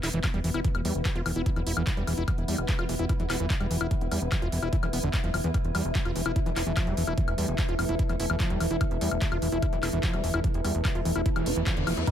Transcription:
Already playing: E3 B3 E4 B4 E5
0.03 E1 E4, clap, open hi-hat, high woodblock
0.13 E1 E3
0.24 F3, kick, clap, closed hi-hat, high woodblock
0.34 E1 G3, closed hi-hat
0.44 E1 E3, open hi-hat
0.54 E1 E4, closed hi-hat, high woodblock
0.65 E3, kick, closed hi-hat
0.75 E1, closed hi-hat, high woodblock
0.85 E2 G3, open hi-hat
0.95 E1, closed hi-hat
1.05 F3, kick, clap, closed hi-hat, high woodblock
1.16 E1 F4, closed hi-hat
1.26 E1 E3, open hi-hat, high woodblock
1.36 E1 E4, closed hi-hat
1.46 E4, kick, closed hi-hat
1.56 E1 E3, closed hi-hat, high woodblock
1.67 E1 E4, open hi-hat
1.77 E1 E3, closed hi-hat, high woodblock
1.87 F3, kick, clap, closed hi-hat
1.97 E1 G3, closed hi-hat
2.07 E1 E3, open hi-hat, high woodblock
2.18 E1 E4, closed hi-hat
2.28 E3, kick, closed hi-hat, high woodblock
2.38 E1, closed hi-hat
2.48 E2 G3, open hi-hat
2.58 E1, closed hi-hat, high woodblock
2.69 F3, kick, clap, closed hi-hat
2.79 E1 F4, closed hi-hat, high woodblock
2.89 E1 E3, open hi-hat
2.99 E1 E4, closed hi-hat
3.09 E4, kick, closed hi-hat, high woodblock
3.20 E1 E3, closed hi-hat
3.30 E1 E4, clap, open hi-hat, high woodblock
3.40 E1 E3, closed hi-hat
3.50 F3, kick, clap, closed hi-hat
3.60 E1 G3, closed hi-hat, high woodblock
3.71 E1 E3, open hi-hat
3.81 E1 E4, closed hi-hat, high woodblock
3.91 E3, kick, closed hi-hat
4.01 E1, closed hi-hat
4.11 E2 G3, open hi-hat, high woodblock
4.22 E1
4.32 F3, kick, clap, closed hi-hat, high woodblock
4.42 E1 F4, closed hi-hat
4.52 E1 E3, open hi-hat
4.62 E1 E4, closed hi-hat, high woodblock
4.73 E4, kick, closed hi-hat
4.83 E1 E3, closed hi-hat, high woodblock
4.93 E1 B3, open hi-hat
5.03 E1 D3
5.14 E3, kick, clap, closed hi-hat, high woodblock
5.24 E1 F3, closed hi-hat
5.34 E1 F3, open hi-hat, high woodblock
5.44 E2 E3, closed hi-hat
5.54 E3 A3, kick, closed hi-hat, high woodblock
5.65 E1, closed hi-hat
5.75 E2 G3, open hi-hat, high woodblock
5.85 E1, closed hi-hat
5.95 F3, kick, clap, closed hi-hat
6.05 E1 F4, closed hi-hat, high woodblock
6.16 E1 E3, open hi-hat
6.26 E1 E4, closed hi-hat, high woodblock
6.36 E4, kick, closed hi-hat
6.46 E1 E3, closed hi-hat
6.56 E1 E4, clap, open hi-hat, high woodblock
6.67 E1 E3, closed hi-hat
6.77 F3, kick, clap, closed hi-hat, high woodblock
6.87 E1 G3, closed hi-hat
6.97 E1 E3, open hi-hat
7.07 E1 E4, high woodblock
7.18 E3, kick, closed hi-hat
7.28 E1, closed hi-hat, high woodblock
7.38 E2 G3, open hi-hat
7.48 E1, closed hi-hat
7.58 F3, kick, clap, closed hi-hat, high woodblock
7.69 E1 F4, closed hi-hat
7.79 E1 E3, open hi-hat, high woodblock
7.89 E1 E4, closed hi-hat
7.99 E4, kick, closed hi-hat
8.09 E1 E3, closed hi-hat, high woodblock
8.20 E1 E4, open hi-hat
8.30 E1 E3, closed hi-hat, high woodblock
8.40 F3, kick, clap, closed hi-hat
8.50 E1 G3, closed hi-hat
8.60 E1 E3, open hi-hat, high woodblock
8.71 E1 E4, closed hi-hat
8.81 E3, kick, closed hi-hat, high woodblock
8.91 E1, closed hi-hat
9.01 E2 G3, open hi-hat
9.11 E1, closed hi-hat, high woodblock
9.22 F3, kick, clap, closed hi-hat
9.32 E1 F4, closed hi-hat, high woodblock
9.42 E1 E3, open hi-hat
9.52 E1 E4, closed hi-hat
9.62 E4, kick, closed hi-hat, high woodblock
9.73 E1 E3, closed hi-hat
9.83 E1 E4, clap, open hi-hat, high woodblock
9.93 E1 E3
10.03 F3, kick, clap, closed hi-hat
10.13 E1 G3, closed hi-hat, high woodblock
10.24 E1 E3, open hi-hat
10.34 E1 E4, closed hi-hat, high woodblock
10.44 E3, kick, closed hi-hat
10.54 E1, closed hi-hat
10.64 E2 G3, open hi-hat, high woodblock
10.75 E1, closed hi-hat
10.85 F3, kick, clap, closed hi-hat, high woodblock
10.95 E1 F4, closed hi-hat
11.05 E1 E3, open hi-hat
11.16 E1 E4, closed hi-hat, high woodblock
11.26 E4, kick, closed hi-hat, reverse cymbal
11.36 E1 E3, closed hi-hat, high woodblock
11.46 E1 E4, open hi-hat
11.56 E1 E3, closed hi-hat
11.67 F3, kick, clap, closed hi-hat, high woodblock
11.77 E1 D3, closed hi-hat
11.87 E1 F3, open hi-hat, high woodblock
11.97 E2 E4, closed hi-hat
12.07 E3 E4, kick, closed hi-hat, high woodblock

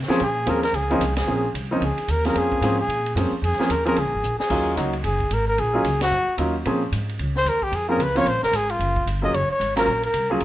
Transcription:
0.03 snare
0.08 F3 A#3 C4 C#4 G#4, muted upright bass stroke, snare
0.20 A#2 G#4, ride
0.46 D#2 F3 A#3 C4 C#4 G#4 A#4, hi-hat pedal, ride
0.63 A#4, snare, ride
0.73 C#2 G#4, ride
0.90 F3 A#3 C4 C#4 D#4, ride
1.00 C2, hi-hat pedal, ride
1.16 G#4, snare, ride
1.27 A#1 F3 A#3 C4 C#4 G#4
1.54 C2, hi-hat pedal, ride
1.71 F3 A#3 C4 C#4 D#4
1.81 C#2 G#4, ride
1.98 muted upright bass stroke, ride
2.08 D#2 A#4, hi-hat pedal, ride
2.25 F3 A#3 C4 C#4 G#4 A#4, snare, ride
2.35 F2 G#4, ride
2.52 kick
2.61 G#2 F3 A#3 C4 C#4 G#4, hi-hat pedal, ride
2.80 G#4
2.88 A#2, ride
3.06 ride
3.15 F#2 F3 A#3 C4 C#4 G#4, hi-hat pedal, ride
3.32 muted upright bass stroke
3.42 F2 G#4, ride
3.52 snare
3.59 F3 A#3 C4 C#4 G#4, muted upright bass stroke, snare
3.70 D#2 A#4, hi-hat pedal, ride
3.85 F3 A#3 C4 C#4 G#4 A#4, ride
3.96 C#2 G#4, ride
4.05 A#1
4.14 G#1
4.23 A#1, hi-hat pedal
4.39 G#4, muted upright bass stroke, snare
4.49 D#2 F#3 A#3 C#4 D#4 F4, kick, crash
4.76 C#2 F#3 A#3 C#4 D#4 F#4, hi-hat pedal, ride
4.93 ride
5.04 F#1 G#4, ride
5.20 kick
5.31 G#1 A#4, hi-hat pedal, ride
5.48 A#4
5.58 A#1 G#4, ride
5.73 F#3 A#3 C#4 D#4 F4
5.84 C#2, hi-hat pedal, ride
6.01 F#4, snare, ride
6.11 F#2
6.28 muted upright bass stroke
6.38 D#2 F#3 A#3 C#4 D#4 F4, hi-hat pedal, ride
6.65 A#2 F3 A#3 C4 C#4 G#4, ride
6.92 G#2, hi-hat pedal, ride
7.09 ride
7.19 C#2, ride
7.35 C5, snare
7.45 D#2 A#4, hi-hat pedal, ride
7.62 G4, kick
7.72 F2 G#4, ride
7.89 F3 A#3 C4 C#4 G#4 A#4
7.97 C#2, hi-hat pedal, ride
8.02 B4
8.15 F3 A#3 C4 C#4 F4 C#5, snare, ride
8.25 A#1 C5, ride
8.35 G#1
8.43 F1 A#4, snare
8.52 G#1, hi-hat pedal, ride
8.56 G#4
8.70 F4, ride
8.79 F#1, ride
8.96 kick
9.06 G1, hi-hat pedal, ride
9.22 F#3 A#3 C#4 F4 G#4 D#5
9.33 F#1 C#5, ride
9.49 C#5, muted upright bass stroke
9.60 G#1, hi-hat pedal, ride
9.76 F#3 A#3 C#4 F4 A#4, snare, ride
9.87 A#1
10.03 A#4, ride
10.14 C2, hi-hat pedal, ride
10.30 F#3 A#3 C#4 F4 G#4
10.40 C#2, ride

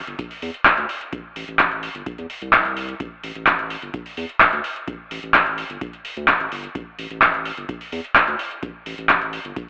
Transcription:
0.07 G1, closed hi-hat
0.19 kick, closed hi-hat
0.31 open hi-hat
0.42 E2, open hi-hat
0.54 closed hi-hat
0.65 kick, clap, closed hi-hat
0.78 D2, closed hi-hat
0.89 open hi-hat
1.01 closed hi-hat
1.13 A1, kick, closed hi-hat
1.36 A1, open hi-hat
1.48 A1, closed hi-hat
1.59 kick, clap, closed hi-hat
1.71 closed hi-hat
1.83 open hi-hat
1.95 G1, closed hi-hat
2.06 kick, closed hi-hat
2.18 E2, closed hi-hat
2.30 open hi-hat
2.42 C2, closed hi-hat
2.53 kick, clap, closed hi-hat
2.65 closed hi-hat
2.77 open hi-hat
2.89 closed hi-hat
3.00 A1, kick, closed hi-hat
3.23 A1, open hi-hat
3.35 A1, closed hi-hat
3.46 kick, clap, closed hi-hat
3.59 closed hi-hat
3.70 open hi-hat
3.82 G1, closed hi-hat
3.94 kick, closed hi-hat
4.06 open hi-hat
4.17 E2, open hi-hat
4.29 closed hi-hat
4.40 kick, clap, closed hi-hat
4.53 D2, closed hi-hat
4.64 open hi-hat
4.76 closed hi-hat
4.88 A1, kick, closed hi-hat
5.11 A1, open hi-hat
5.23 A1, closed hi-hat
5.34 kick, clap, closed hi-hat
5.46 closed hi-hat
5.58 open hi-hat
5.70 G1, closed hi-hat
5.81 kick, closed hi-hat
5.93 closed hi-hat
6.05 open hi-hat
6.17 D2, closed hi-hat
6.28 kick, clap, closed hi-hat
6.40 A1, closed hi-hat
6.52 G1, open hi-hat
6.64 closed hi-hat
6.75 A1, kick, closed hi-hat
6.99 A1, open hi-hat
7.11 A1, closed hi-hat
7.22 kick, clap, closed hi-hat
7.34 closed hi-hat
7.45 open hi-hat
7.57 G1, closed hi-hat
7.69 kick, closed hi-hat
7.81 open hi-hat
7.92 E2, open hi-hat
8.04 closed hi-hat
8.15 kick, clap, closed hi-hat
8.28 D2, closed hi-hat
8.39 open hi-hat
8.51 closed hi-hat
8.63 A1, kick, closed hi-hat
8.86 A1, open hi-hat
8.98 A1, closed hi-hat
9.09 kick, clap, closed hi-hat
9.22 closed hi-hat
9.33 open hi-hat
9.45 G1, closed hi-hat
9.56 kick, closed hi-hat

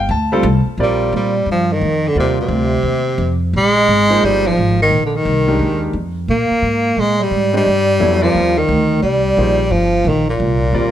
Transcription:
Already playing: G5
0.09 D2 A5
0.32 G3 C4 F4 A4
0.43 C2
0.66 muted upright bass stroke
0.78 A#1 G3 C4 F4 A#4 D5
0.83 G3
1.12 A#2 G3
1.46 G2
1.51 F3
1.73 D#3
1.81 F2
2.08 D3
2.15 D#2 G3 C4 F4 A#4 D5
2.20 C3
2.41 C3
2.48 D2
2.83 D#2
3.18 F2
3.53 A#1 G#3
3.58 G#3
3.88 G#1
4.09 F3 A#3 D#4 G#4 C5
4.22 G1 G3
4.47 F3
4.57 G#1
4.82 D#3
4.91 A#1
5.04 D3
5.15 D#3
5.25 C2
5.47 D#3 G#3 D4 G4 A#4
5.59 D#2
5.93 F2
6.28 A#2 A#3
6.51 muted upright bass stroke
6.62 G#2
6.97 A#2 G#3
7.20 G3
7.31 G#2
7.53 G3 G#3 D4 G4 C5 D#5
7.66 G2
8.00 F2 F#3 B3 E4 A4 C#5
8.22 F3 G3 C4 F4 A#4 D5
8.35 D#2
8.58 D#3
8.69 D2
9.02 C2 G3
9.37 A#1 F3 A#3 D#4 G#4 C5
9.70 G1 F3
10.05 A#1 D#3
10.09 D#3
10.27 A#2
10.40 C2
10.73 D#2 G3 C4 F4 A#4 D5

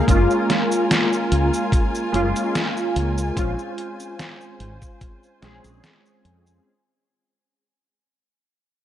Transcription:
Already playing: G#3 D#4 A#4
0.07 F#1 G#3 A#3 C#4 F4 G#5, kick, closed hi-hat, cabasa
0.30 cabasa
0.50 snare, closed hi-hat
0.72 cabasa
0.91 snare, closed hi-hat, cabasa
1.13 cabasa
1.32 C#2, closed hi-hat
1.54 cabasa
1.72 kick, closed hi-hat, cabasa
1.95 cabasa
2.12 F#1 G#3 A#3 C#4 F4, closed hi-hat
2.36 closed hi-hat, cabasa
2.55 snare, closed hi-hat, cabasa
2.77 cabasa
2.96 C#2, closed hi-hat
3.18 cabasa
3.35 A#1 G#3 C4 C#4 F4 C5, kick, closed hi-hat, cabasa
3.59 cabasa
3.78 closed hi-hat
4.00 cabasa
4.19 snare, closed hi-hat, cabasa
4.41 cabasa
4.60 G#1, closed hi-hat
4.82 kick, cabasa
5.01 kick, closed hi-hat, cabasa
5.23 cabasa
5.41 A#1 G#3 C4 C#4 G#4, snare, closed hi-hat
5.64 A#1, closed hi-hat, cabasa
5.84 snare, closed hi-hat, cabasa
6.06 cabasa
6.25 F2, closed hi-hat
6.47 cabasa

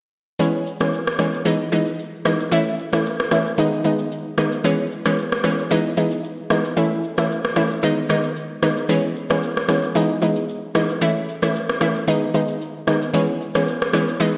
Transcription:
0.39 E3 G#3 B3 C#4, shaker
0.67 shaker
0.80 E3 G#3 B3 C#4, cross-stick, shaker
0.94 shaker
1.07 cross-stick
1.19 E3 G#3 B3 C#4, cross-stick, shaker
1.34 shaker
1.45 E3 G#3 B3 D#4, shaker
1.72 E3 G#3 B3 D#4, shaker
1.86 shaker
1.99 shaker
2.25 E3 G#3 B3 D#4, cross-stick, shaker
2.40 shaker
2.52 E3 A3 C#4 E4, shaker
2.79 shaker
2.93 E3 A3 C#4 E4, cross-stick, shaker
3.06 shaker
3.20 cross-stick
3.31 E3 A3 C#4 E4, cross-stick, shaker
3.47 shaker
3.57 D#3 G#3 B3 D#4, shaker
3.84 D#3 G#3 B3 D#4, shaker
3.99 shaker
4.12 shaker
4.38 D#3 G#3 B3 D#4, cross-stick, shaker
4.52 shaker
4.64 E3 G#3 B3 C#4, shaker
4.91 shaker
5.05 E3 G#3 B3 C#4, cross-stick, shaker
5.18 shaker
5.32 cross-stick
5.44 E3 G#3 B3 C#4, cross-stick, shaker
5.59 shaker
5.70 E3 G#3 B3 D#4, shaker
5.97 E3 G#3 B3 D#4, shaker
6.11 shaker
6.24 shaker
6.50 E3 G#3 B3 D#4, cross-stick, shaker
6.65 shaker
6.77 E3 A3 C#4 E4, shaker
7.04 shaker
7.18 E3 A3 C#4 E4, cross-stick, shaker
7.31 shaker
7.45 cross-stick
7.56 E3 A3 C#4 E4, cross-stick, shaker
7.71 shaker
7.82 D#3 G#3 B3 D#4, shaker
8.09 D#3 G#3 B3 D#4, cross-stick, shaker
8.23 shaker
8.37 shaker
8.62 D#3 G#3 B3 D#4, cross-stick, shaker
8.77 shaker
8.89 E3 G#3 B3 C#4, shaker
9.16 shaker
9.30 E3 G#3 B3 C#4, cross-stick, shaker
9.43 shaker
9.57 cross-stick
9.68 E3 G#3 B3 C#4, cross-stick, shaker
9.84 shaker
9.95 E3 G#3 B3 D#4, shaker
10.22 E3 G#3 B3 D#4, shaker
10.36 shaker
10.49 shaker
10.75 E3 G#3 B3 D#4, cross-stick, shaker
10.90 shaker
11.01 E3 A3 C#4 E4, shaker
11.29 shaker
11.42 E3 A3 C#4 E4, cross-stick, shaker
11.56 shaker
11.69 cross-stick
11.81 E3 A3 C#4 E4, cross-stick, shaker
11.96 shaker
12.07 D#3 G#3 B3 D#4, shaker
12.34 D#3 G#3 B3 D#4, shaker
12.48 shaker
12.62 shaker
12.87 D#3 G#3 B3 D#4, cross-stick, shaker
13.02 shaker
13.14 E3 G#3 B3 C#4, shaker
13.41 shaker
13.55 E3 G#3 B3 C#4, cross-stick, shaker
13.68 shaker
13.82 cross-stick
13.93 E3 G#3 B3 C#4, cross-stick, shaker
14.09 shaker
14.20 E3 G#3 B3 D#4, shaker

